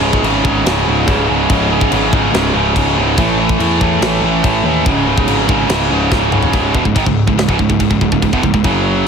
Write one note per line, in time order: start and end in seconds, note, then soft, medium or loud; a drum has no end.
0.00 0.20 C#1 loud
0.00 0.22 C#2 medium
0.00 0.22 G#2 medium
0.00 0.24 C#3 loud
0.00 3.13 C#4 medium
0.00 3.14 G#4 medium
0.00 3.14 D#5 medium
0.00 3.14 E5 medium
0.13 kick medium
0.23 0.42 G#1 medium
0.23 0.43 C#2 medium
0.23 0.43 G#2 loud
0.23 0.44 C#3 loud
0.23 crash medium
0.44 0.63 G#1 medium
0.44 0.63 C#2 medium
0.44 0.64 G#2 medium
0.44 0.64 C#3 loud
0.44 kick medium
0.64 0.85 C#1 loud
0.64 0.84 C#2 medium
0.64 0.85 G#2 medium
0.64 0.85 C#3 medium
0.64 snare loud
0.64 crash medium
0.86 1.06 C#1 medium
0.86 1.06 C#2 medium
0.86 1.06 G#2 medium
0.86 1.07 C#3 medium
1.07 1.27 C#1 loud
1.07 1.26 C#2 loud
1.07 1.26 G#2 medium
1.07 1.27 C#3 loud
1.07 kick medium
1.07 crash medium
1.27 1.48 C#1 medium
1.27 1.47 C#2 medium
1.27 1.48 G#2 medium
1.27 1.49 C#3 medium
1.48 1.88 C#1 loud
1.48 1.68 C#2 loud
1.48 1.69 G#2 loud
1.48 1.69 C#3 loud
1.48 kick loud
1.48 crash medium
1.69 1.89 C#2 medium
1.69 1.89 G#2 medium
1.69 1.90 C#3 loud
1.81 kick medium
1.90 2.11 G#1 loud
1.90 2.10 C#2 medium
1.90 2.11 G#2 medium
1.90 2.11 C#3 medium
1.90 crash medium
2.11 2.32 G#1 medium
2.11 2.31 C#2 loud
2.11 2.32 G#2 loud
2.11 2.32 C#3 loud
2.11 kick medium
2.32 2.53 C#1 loud
2.32 2.52 C#2 loud
2.32 2.52 G#2 medium
2.32 2.53 C#3 loud
2.32 snare loud
2.32 crash medium
2.53 2.73 C#1 medium
2.53 2.73 C#2 medium
2.53 2.74 G#2 loud
2.53 2.74 C#3 loud
2.74 2.95 C#1 loud
2.74 2.95 C#2 loud
2.74 2.95 G#2 medium
2.74 2.95 C#3 loud
2.74 kick medium
2.74 crash medium
2.96 3.16 C#1 loud
2.96 3.16 C#2 medium
2.96 3.16 G#2 medium
2.96 3.16 C#3 medium
3.17 3.56 A1 loud
3.17 3.36 A2 loud
3.17 3.38 E3 loud
3.17 3.38 A3 loud
3.17 4.86 A3 medium
3.17 4.86 E4 medium
3.17 4.86 A4 medium
3.17 4.86 C#5 medium
3.17 kick loud
3.17 crash medium
3.38 3.58 A2 medium
3.38 3.59 E3 loud
3.38 3.59 A3 medium
3.49 kick medium
3.59 3.79 E2 loud
3.59 3.79 A2 medium
3.59 3.81 E3 loud
3.59 3.80 A3 loud
3.59 crash medium
3.80 4.00 E2 medium
3.80 3.99 A2 loud
3.80 4.00 E3 loud
3.80 4.00 A3 loud
3.80 kick medium
4.00 4.20 A1 loud
4.00 4.20 A2 medium
4.00 4.21 E3 medium
4.00 4.21 A3 loud
4.00 snare loud
4.00 crash medium
4.21 4.41 A1 loud
4.21 4.41 A2 medium
4.21 4.43 E3 medium
4.21 4.43 A3 loud
4.43 4.63 A1 loud
4.43 4.62 A2 loud
4.43 4.64 E3 loud
4.43 4.64 A3 loud
4.43 kick medium
4.43 crash medium
4.64 4.83 D#2 loud
4.64 4.84 A2 medium
4.64 4.86 E3 medium
4.64 4.85 A3 loud
4.85 5.24 C#1 loud
4.85 5.06 C#2 loud
4.85 5.06 G#2 loud
4.85 5.07 C#3 loud
4.85 6.52 C#4 medium
4.85 6.53 G#4 medium
4.85 6.52 D#5 medium
4.85 6.52 E5 medium
4.85 kick loud
4.85 crash medium
5.07 5.27 C#2 medium
5.07 5.28 G#2 medium
5.07 5.28 C#3 loud
5.18 kick medium
5.27 5.46 G#1 medium
5.27 5.47 C#2 medium
5.27 5.48 G#2 medium
5.27 5.49 C#3 medium
5.27 crash medium
5.48 5.68 G#1 medium
5.48 5.68 C#2 loud
5.48 5.69 G#2 loud
5.48 5.69 C#3 loud
5.48 kick medium
5.69 5.88 C#1 medium
5.69 5.89 C#2 medium
5.69 5.90 G#2 medium
5.69 5.90 C#3 loud
5.69 snare loud
5.69 crash medium
5.90 6.10 C#1 medium
5.90 6.10 C#2 medium
5.90 6.11 G#2 medium
5.90 6.12 C#3 loud
6.11 6.31 C#1 loud
6.11 6.31 C#2 medium
6.11 6.32 G#2 loud
6.11 6.32 C#3 loud
6.11 kick loud
6.11 snare medium
6.32 6.52 C#1 medium
6.32 6.51 C#2 medium
6.32 6.52 G#2 medium
6.32 6.53 C#3 medium
6.32 mid tom loud
6.43 floor tom loud
6.53 6.73 C#1 loud
6.53 6.74 C#2 loud
6.53 6.74 G#2 loud
6.53 6.74 C#3 loud
6.53 kick medium
6.53 crash medium
6.74 6.84 E1 loud
6.74 6.84 E2 medium
6.74 6.85 B2 medium
6.74 kick loud
6.84 6.95 C#1 medium
6.84 6.94 C#2 medium
6.84 6.93 G#2 medium
6.84 kick medium
6.95 7.06 G#1 loud
6.95 7.05 G#2 medium
6.95 7.06 D#3 loud
6.95 kick loud
6.95 crash medium
7.06 7.26 C#1 medium
7.06 7.23 C#2 medium
7.06 7.23 G#2 medium
7.06 kick medium
7.27 7.37 C#1 medium
7.27 7.36 C#2 medium
7.27 7.37 G#2 medium
7.27 kick medium
7.37 7.48 C#1 medium
7.37 7.47 C#2 medium
7.37 7.48 G#2 medium
7.37 snare loud
7.37 crash medium
7.48 7.59 C#1 medium
7.48 7.57 C#2 medium
7.48 7.58 G#2 medium
7.48 kick loud
7.59 7.69 C#1 medium
7.59 7.68 C#2 medium
7.59 7.68 G#2 medium
7.59 kick medium
7.69 7.80 C#1 medium
7.69 7.78 C#2 medium
7.69 7.79 G#2 medium
7.69 kick medium
7.79 7.90 C#1 medium
7.79 7.90 C#2 medium
7.79 7.90 G#2 medium
7.79 kick loud
7.79 crash medium
7.90 8.01 C#1 medium
7.90 8.00 C#2 medium
7.90 8.00 G#2 medium
7.90 kick medium
8.01 8.11 C#1 medium
8.01 8.11 C#2 medium
8.01 8.11 G#2 medium
8.01 kick medium
8.12 8.22 C#1 medium
8.12 8.21 C#2 medium
8.12 8.22 G#2 medium
8.12 kick medium
8.22 8.32 C#1 medium
8.22 8.33 C#2 medium
8.22 8.33 G#2 medium
8.22 kick medium
8.22 crash medium
8.33 8.43 E1 medium
8.33 8.43 E2 medium
8.33 8.44 B2 loud
8.33 kick medium
8.43 8.53 C#1 medium
8.43 8.53 C#2 medium
8.43 8.53 G#2 medium
8.43 kick medium
8.54 8.64 C#1 medium
8.54 8.64 C#2 medium
8.54 8.65 G#2 medium
8.54 kick medium
8.64 9.04 F#1 medium
8.64 9.06 F#2 medium
8.64 9.07 C#3 medium
8.64 9.07 F#3 loud
8.64 kick loud
8.64 crash medium